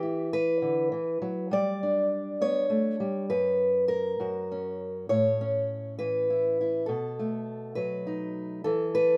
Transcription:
Already playing: E3 G4
0.03 E4
0.33 B4
0.62 D3
0.92 E3
1.22 F#3
1.51 G3 D5
1.83 D4
2.41 B3 C#5
2.70 A3
3.00 G3
3.30 F#2 B4
3.88 A#4
4.20 F#2 F#4
4.52 C#4
5.09 A2 C#5
5.41 C#4
5.99 E3 B4
6.30 E4
6.61 E4
6.86 B2 A4
7.19 A3
7.75 F#3 B4
8.07 D#4
8.64 E3 A4
8.95 B4

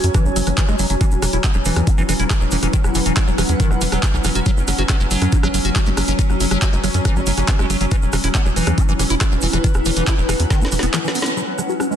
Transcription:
Already playing: F#3 C#4 F#4 C#5 G#5
0.04 F#2, closed hi-hat, shaker
0.14 E3, kick, cross-stick, closed hi-hat, shaker
0.25 G#1 G#3, shaker
0.36 F#1 F#3, open hi-hat, shaker
0.47 F#1 E3, cross-stick, closed hi-hat, shaker
0.57 E3, kick, clap, closed hi-hat, shaker
0.68 F#1 G#3, cross-stick, shaker
0.79 F#1 F#3, open hi-hat, shaker
0.90 F#1 F#3, closed hi-hat, shaker
1.01 E3 E4, kick, cross-stick, closed hi-hat, shaker
1.10 E1 B4, shaker
1.22 E1 E3, cross-stick, open hi-hat, shaker
1.33 E1 E4, closed hi-hat, shaker
1.44 B3, kick, clap, closed hi-hat, shaker
1.54 E1 F#3, cross-stick, shaker
1.65 E1 E3 F#5, open hi-hat, shaker
1.76 E2, cross-stick, closed hi-hat, shaker
1.87 E4, kick, closed hi-hat, shaker
1.98 F#1 E3, shaker
2.09 E1 E3, cross-stick, open hi-hat, shaker
2.19 E1 E4, closed hi-hat, shaker
2.30 kick, cross-stick, clap, closed hi-hat, shaker
2.41 E1 F#3, shaker
2.51 E1 E3, open hi-hat, shaker
2.63 E1 E3, cross-stick, closed hi-hat, shaker
2.73 D#3, kick, closed hi-hat, shaker
2.84 E1, cross-stick, shaker
2.95 E1 E3, open hi-hat, shaker
3.06 E1 E3, closed hi-hat, shaker
3.16 E4, kick, cross-stick, clap, closed hi-hat, shaker
3.27 E1 F#3, shaker
3.38 E1 E3, cross-stick, open hi-hat, shaker
3.49 E2, closed hi-hat, shaker
3.60 D#3, kick, closed hi-hat, shaker
3.71 E1 F#4, cross-stick, shaker
3.81 E1 E3, open hi-hat, shaker
3.92 E1 F#3, cross-stick, closed hi-hat, shaker
4.03 kick, clap, closed hi-hat, shaker
4.14 B1 E3, shaker
4.24 E1 E3, cross-stick, open hi-hat, shaker
4.35 E1 F#4, closed hi-hat, shaker
4.46 F#3 F#4, kick, closed hi-hat, shaker
4.56 F#1 C#5, shaker
4.68 F#1 F#3, cross-stick, open hi-hat, shaker
4.78 F#1 F#4, closed hi-hat, shaker
4.89 C#4, kick, cross-stick, clap, closed hi-hat, shaker
5.00 F#1 G#3 G#5, shaker
5.11 F#1 F#3, open hi-hat, shaker
5.22 F#2, cross-stick, closed hi-hat, shaker
5.32 F#4, kick, closed hi-hat, shaker
5.43 G#1 F#3, cross-stick, shaker
5.54 F#1 F#3, open hi-hat, shaker
5.65 F#1 F#4, closed hi-hat, shaker
5.76 F#4, kick, cross-stick, clap, closed hi-hat, shaker
5.86 F#1 G#3, shaker
5.97 F#1 F#3, cross-stick, open hi-hat, shaker
6.08 F#1 F#3, closed hi-hat, shaker
6.19 E3, kick, closed hi-hat, shaker
6.30 F#1, cross-stick, shaker
6.40 F#1 F#3, open hi-hat, shaker
6.51 F#1 F#3, cross-stick, closed hi-hat, shaker
6.62 F#4, kick, clap, closed hi-hat, shaker
6.73 F#1 G#3, shaker
6.84 F#1 F#3, cross-stick, open hi-hat, shaker
6.94 F#2, closed hi-hat, shaker
7.05 E3, kick, cross-stick, closed hi-hat, shaker
7.16 G#1 G#3, shaker
7.26 F#1 F#3, open hi-hat, shaker
7.38 F#1 E3, cross-stick, closed hi-hat, shaker
7.48 E3, kick, clap, closed hi-hat, shaker
7.59 F#1 G#3, cross-stick, shaker
7.70 F#1 F#3, open hi-hat, shaker
7.80 F#1 F#3, closed hi-hat, shaker
7.91 E3 E4, kick, cross-stick, closed hi-hat, shaker
8.02 E1, shaker
8.13 E1 E3, cross-stick, open hi-hat, shaker
8.19 B4
8.24 E1 E4, closed hi-hat, shaker
8.35 B3, kick, clap, closed hi-hat, shaker
8.45 E1 F#3, cross-stick, shaker
8.56 E1 E3, open hi-hat, shaker
8.67 E2, cross-stick, closed hi-hat, shaker
8.75 E4 F#5, kick, closed hi-hat, shaker
8.88 F#1 E3, shaker
8.99 E1 E3, cross-stick, open hi-hat, shaker
9.10 E1 E4, closed hi-hat, shaker
9.21 E4, kick, cross-stick, clap, closed hi-hat, shaker
9.32 E1 F#3, shaker
9.41 E1 E3, open hi-hat, shaker
9.53 E1 E3, cross-stick, closed hi-hat, shaker
9.64 D#3, kick, closed hi-hat, shaker
9.74 E1, cross-stick, shaker
9.85 E1 E3, open hi-hat, shaker
9.96 E1 E3, closed hi-hat, shaker
10.07 E4, kick, cross-stick, clap, closed hi-hat, shaker
10.18 E1 F#3, shaker
10.29 E1 E3, cross-stick, open hi-hat, shaker
10.40 E2, closed hi-hat, shaker
10.50 D#3, kick, snare, closed hi-hat, shaker
10.61 F#1 F#4, snare, shaker
10.72 E1 E3, open hi-hat, shaker
10.79 E1 B3, snare, closed hi-hat, shaker
10.94 E3, snare, clap, closed hi-hat, shaker
11.04 E3, snare, shaker
11.15 B3, open hi-hat, shaker
11.22 B3, snare, closed hi-hat, shaker
11.37 F#3 C#4 F#4, shaker
11.58 F#3, cross-stick, shaker
11.62 C#5
11.69 F#4 G#5, shaker
11.80 C#4, cross-stick, shaker
11.91 G#3, shaker

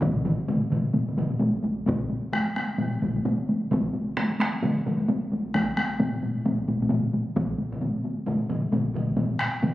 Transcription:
0.02 taiko, taiko low-mid, taiko mid, taiko high
0.15 taiko low-mid, taiko mid, taiko high
0.25 taiko low-mid, taiko mid, taiko high
0.39 taiko high
0.48 taiko low-mid, taiko mid, taiko high
0.62 taiko high
0.71 taiko low-mid, taiko mid, taiko high
0.84 taiko high
0.93 taiko low-mid, taiko mid, taiko high
1.07 taiko low-mid, taiko mid, taiko high
1.17 taiko low-mid, taiko mid, taiko high
1.30 taiko high
1.39 taiko, taiko high
1.54 taiko high
1.63 taiko, taiko high
1.77 taiko high
1.86 taiko, taiko low-mid, taiko high
2.01 taiko high
2.09 taiko high
2.23 taiko high
2.33 taiko rim, taiko high
2.48 taiko high
2.56 taiko rim, taiko high
2.70 taiko high
2.78 taiko low-mid, taiko high
2.93 taiko high
3.02 taiko, taiko low-mid, taiko high
3.16 taiko high
3.25 taiko high
3.40 taiko high
3.49 taiko high
3.63 taiko high
3.71 taiko, taiko mid, taiko high
3.85 taiko high
3.94 taiko high
4.08 taiko high
4.17 taiko rim, taiko high
4.31 taiko high
4.40 taiko rim, taiko high
4.53 taiko high
4.63 taiko mid, taiko high
4.77 taiko high
4.86 taiko mid, taiko high
5.00 taiko high
5.08 taiko, taiko high
5.22 taiko high
5.32 taiko, taiko high
5.45 taiko high
5.54 taiko rim, taiko, taiko high
5.69 taiko high
5.77 taiko rim, taiko high
5.91 taiko high
6.00 taiko low-mid, taiko high
6.14 taiko high
6.22 taiko low-mid, taiko high
6.36 taiko low-mid, taiko high
6.45 taiko, taiko low-mid, taiko high
6.60 taiko high
6.68 taiko, taiko low-mid, taiko high
6.82 taiko low-mid, taiko high
6.90 taiko low-mid, taiko high
7.04 taiko high
7.13 taiko high
7.27 taiko high
7.36 taiko, taiko low-mid, taiko mid, taiko high
7.50 taiko high
7.58 taiko high
7.72 taiko low-mid, taiko mid, taiko high
7.81 taiko high
7.96 taiko high
8.04 taiko high
8.18 taiko high
8.27 taiko low-mid, taiko mid, taiko high
8.42 taiko high
8.49 taiko low-mid, taiko mid, taiko high
8.72 taiko, taiko low-mid, taiko mid, taiko high
8.86 taiko high
8.94 taiko, taiko low-mid, taiko mid, taiko high
9.08 taiko high
9.17 taiko low-mid, taiko mid, taiko high
9.30 taiko high
9.39 taiko rim
9.54 taiko high
9.62 taiko low-mid, taiko mid, taiko high

